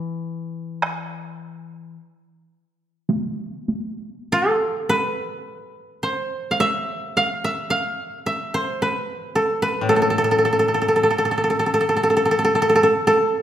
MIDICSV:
0, 0, Header, 1, 4, 480
1, 0, Start_track
1, 0, Tempo, 1123596
1, 359, Time_signature, 4, 2, 24, 8
1, 1324, Tempo, 1171875
1, 2284, Tempo, 1115242
1, 3244, Tempo, 1090909
1, 4204, Tempo, 1065719
1, 5810, End_track
2, 0, Start_track
2, 0, Title_t, "Koto"
2, 0, Program_c, 0, 107
2, 0, Note_on_c, 0, 76, 91
2, 1792, Note_off_c, 0, 76, 0
2, 1825, Note_on_c, 0, 69, 76
2, 2059, Note_on_c, 0, 71, 77
2, 2536, Note_on_c, 0, 72, 60
2, 2562, Note_off_c, 0, 71, 0
2, 2621, Note_off_c, 0, 69, 0
2, 2743, Note_on_c, 0, 77, 52
2, 2782, Note_on_c, 0, 76, 79
2, 2808, Note_off_c, 0, 77, 0
2, 3027, Note_on_c, 0, 77, 68
2, 3052, Note_off_c, 0, 76, 0
2, 3145, Note_on_c, 0, 76, 66
2, 3171, Note_off_c, 0, 77, 0
2, 3257, Note_on_c, 0, 77, 72
2, 3275, Note_off_c, 0, 72, 0
2, 3283, Note_off_c, 0, 76, 0
2, 3504, Note_on_c, 0, 76, 63
2, 3530, Note_off_c, 0, 77, 0
2, 3626, Note_on_c, 0, 72, 66
2, 3748, Note_on_c, 0, 71, 66
2, 3775, Note_off_c, 0, 72, 0
2, 3984, Note_on_c, 0, 69, 58
2, 4100, Note_off_c, 0, 71, 0
2, 4101, Note_on_c, 0, 71, 64
2, 4161, Note_off_c, 0, 76, 0
2, 4218, Note_off_c, 0, 69, 0
2, 4220, Note_on_c, 0, 69, 64
2, 4251, Note_off_c, 0, 69, 0
2, 4252, Note_on_c, 0, 69, 45
2, 4276, Note_off_c, 0, 69, 0
2, 4277, Note_on_c, 0, 69, 53
2, 4313, Note_off_c, 0, 69, 0
2, 4315, Note_on_c, 0, 69, 48
2, 4349, Note_off_c, 0, 69, 0
2, 4351, Note_on_c, 0, 69, 56
2, 4376, Note_off_c, 0, 69, 0
2, 4378, Note_on_c, 0, 69, 45
2, 4408, Note_off_c, 0, 69, 0
2, 4410, Note_on_c, 0, 69, 57
2, 4441, Note_off_c, 0, 69, 0
2, 4442, Note_on_c, 0, 69, 42
2, 4470, Note_off_c, 0, 69, 0
2, 4471, Note_on_c, 0, 69, 48
2, 4504, Note_off_c, 0, 69, 0
2, 4506, Note_on_c, 0, 69, 42
2, 4534, Note_off_c, 0, 69, 0
2, 4536, Note_on_c, 0, 69, 47
2, 4575, Note_off_c, 0, 69, 0
2, 4576, Note_on_c, 0, 69, 43
2, 4602, Note_off_c, 0, 69, 0
2, 4604, Note_on_c, 0, 69, 47
2, 4635, Note_off_c, 0, 69, 0
2, 4636, Note_on_c, 0, 69, 45
2, 4665, Note_off_c, 0, 69, 0
2, 4667, Note_on_c, 0, 69, 47
2, 4699, Note_off_c, 0, 69, 0
2, 4701, Note_on_c, 0, 69, 45
2, 4733, Note_off_c, 0, 69, 0
2, 4734, Note_on_c, 0, 69, 53
2, 4765, Note_off_c, 0, 69, 0
2, 4767, Note_on_c, 0, 69, 45
2, 4800, Note_off_c, 0, 69, 0
2, 4802, Note_on_c, 0, 69, 52
2, 4831, Note_off_c, 0, 69, 0
2, 4833, Note_on_c, 0, 69, 42
2, 4858, Note_off_c, 0, 69, 0
2, 4860, Note_on_c, 0, 69, 47
2, 4887, Note_off_c, 0, 69, 0
2, 4889, Note_on_c, 0, 69, 42
2, 4899, Note_off_c, 0, 71, 0
2, 4915, Note_off_c, 0, 69, 0
2, 4917, Note_on_c, 0, 69, 47
2, 4943, Note_off_c, 0, 69, 0
2, 4945, Note_on_c, 0, 69, 43
2, 4985, Note_off_c, 0, 69, 0
2, 4987, Note_on_c, 0, 69, 45
2, 5016, Note_off_c, 0, 69, 0
2, 5018, Note_on_c, 0, 69, 38
2, 5050, Note_off_c, 0, 69, 0
2, 5052, Note_on_c, 0, 69, 51
2, 5081, Note_off_c, 0, 69, 0
2, 5083, Note_on_c, 0, 69, 41
2, 5118, Note_off_c, 0, 69, 0
2, 5120, Note_on_c, 0, 69, 47
2, 5152, Note_off_c, 0, 69, 0
2, 5154, Note_on_c, 0, 69, 43
2, 5183, Note_off_c, 0, 69, 0
2, 5185, Note_on_c, 0, 69, 51
2, 5213, Note_off_c, 0, 69, 0
2, 5215, Note_on_c, 0, 69, 42
2, 5243, Note_off_c, 0, 69, 0
2, 5245, Note_on_c, 0, 69, 51
2, 5282, Note_off_c, 0, 69, 0
2, 5284, Note_on_c, 0, 69, 45
2, 5308, Note_off_c, 0, 69, 0
2, 5310, Note_on_c, 0, 69, 54
2, 5342, Note_off_c, 0, 69, 0
2, 5344, Note_on_c, 0, 69, 47
2, 5369, Note_off_c, 0, 69, 0
2, 5371, Note_on_c, 0, 69, 55
2, 5416, Note_off_c, 0, 69, 0
2, 5418, Note_on_c, 0, 69, 53
2, 5447, Note_off_c, 0, 69, 0
2, 5449, Note_on_c, 0, 69, 58
2, 5481, Note_off_c, 0, 69, 0
2, 5482, Note_on_c, 0, 69, 48
2, 5508, Note_off_c, 0, 69, 0
2, 5510, Note_on_c, 0, 69, 60
2, 5543, Note_off_c, 0, 69, 0
2, 5545, Note_on_c, 0, 69, 57
2, 5650, Note_off_c, 0, 69, 0
2, 5652, Note_on_c, 0, 69, 72
2, 5810, Note_off_c, 0, 69, 0
2, 5810, End_track
3, 0, Start_track
3, 0, Title_t, "Koto"
3, 0, Program_c, 1, 107
3, 0, Note_on_c, 1, 52, 66
3, 830, Note_off_c, 1, 52, 0
3, 4185, Note_on_c, 1, 45, 44
3, 5635, Note_off_c, 1, 45, 0
3, 5810, End_track
4, 0, Start_track
4, 0, Title_t, "Taiko and cinematic ensemble drums"
4, 352, Note_on_c, 9, 37, 68
4, 395, Note_off_c, 9, 37, 0
4, 1320, Note_on_c, 9, 48, 67
4, 1361, Note_off_c, 9, 48, 0
4, 1563, Note_on_c, 9, 48, 45
4, 1604, Note_off_c, 9, 48, 0
4, 5810, End_track
0, 0, End_of_file